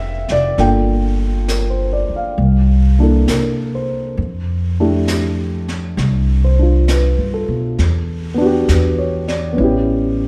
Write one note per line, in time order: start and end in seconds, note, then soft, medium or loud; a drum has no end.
0.00 0.26 F1 medium
0.00 0.58 C4 soft
0.00 0.57 D4 soft
0.00 0.57 F4 soft
0.00 0.58 A4 soft
0.00 0.32 E5 medium
0.00 0.59 F5 medium
0.28 0.56 F1 medium
0.28 0.60 D5 medium
0.28 snare soft
0.58 2.05 G1 medium
0.58 2.37 A#3 soft
0.58 2.38 D4 soft
0.58 2.38 F4 soft
0.58 2.38 A4 soft
0.58 3.86 G5 medium
0.58 brush sweep soft
0.58 snare soft
1.48 1.91 A#4 soft
1.48 snare soft
1.48 hi-hat pedal soft
1.70 2.09 C5 soft
1.93 2.20 D5 soft
2.09 muted upright bass stroke soft
2.16 2.47 F5 soft
2.38 3.24 C2 medium
2.38 brush sweep soft
2.98 4.17 A#3 soft
2.98 4.18 D4 soft
2.98 4.18 E4 soft
3.03 4.19 A4 soft
3.28 4.13 C3 medium
3.28 4.00 A#4 soft
3.28 snare soft
3.28 hi-hat pedal medium
3.75 4.37 C5 soft
4.17 5.93 F2 medium
4.17 brush sweep soft
4.80 7.78 A3 soft
4.80 6.58 D4 soft
4.80 7.78 E4 soft
4.80 7.78 G4 soft
5.08 snare soft
5.08 hi-hat pedal soft
5.68 snare soft
5.97 7.13 C2 medium
5.97 brush sweep soft
5.97 snare soft
6.44 7.07 C5 soft
6.59 7.77 D4 soft
6.59 7.79 F4 soft
6.88 7.60 B4 soft
6.88 snare soft
6.88 hi-hat pedal soft
7.18 7.46 G2 soft
7.34 7.97 A4 soft
7.48 7.76 B2 medium
7.78 8.64 E2 medium
7.78 brush sweep soft
7.78 snare soft
8.34 9.51 B3 medium
8.34 9.57 D4 medium
8.42 9.58 F#4 medium
8.46 9.60 G4 medium
8.68 9.54 E2 medium
8.68 9.25 B4 soft
8.68 snare soft
8.68 hi-hat pedal soft
8.98 9.45 C#5 soft
9.28 9.75 D5 soft
9.28 snare soft
9.53 10.28 B3 medium
9.53 10.28 C#4 soft
9.58 10.28 A1 medium
9.58 10.28 E4 soft
9.58 brush sweep soft
9.64 10.28 G4 medium